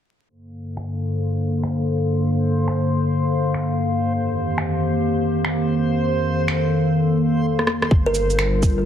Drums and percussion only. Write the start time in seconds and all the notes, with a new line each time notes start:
0.77 finger snap
1.64 finger snap
2.68 finger snap
3.54 finger snap
4.58 finger snap
5.45 finger snap
6.48 finger snap
7.59 cross-stick
7.67 cross-stick
7.82 cross-stick
7.91 kick
8.15 shaker
8.30 shaker
8.39 finger snap
8.63 kick, shaker